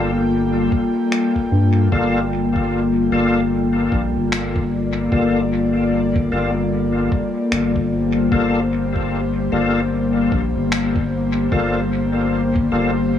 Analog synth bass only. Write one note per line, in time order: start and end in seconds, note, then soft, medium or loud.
0.00 0.69 G1 loud
1.52 1.88 G2 medium
1.92 3.09 G1 medium
3.12 3.89 G1 loud
3.92 4.13 A#1 medium
4.15 5.09 G1 medium
5.12 6.29 G1 medium
6.32 7.09 G1 medium
7.52 8.29 G1 medium
8.32 9.49 G1 medium
9.52 10.29 G1 medium
10.32 10.53 A#1 medium
10.56 11.49 G1 medium
11.52 12.69 G1 medium
12.72 13.19 G1 loud